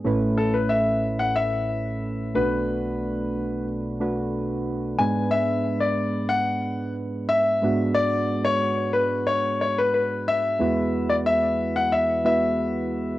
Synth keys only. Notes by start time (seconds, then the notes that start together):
0.04 A1 A2 A3 C#4 E4 B4
2.34 B1 B2 A3 D4 F#4 B4
4.00 A3 D4 F#4 B4
4.99 G#2 G#3 B3 D4 B4
7.62 G#2 G#3 B3 D4 F#4
10.59 E2 E3 G#3 B3 E4 F#4 B4
12.24 G#3 B3 E4 F#4 B4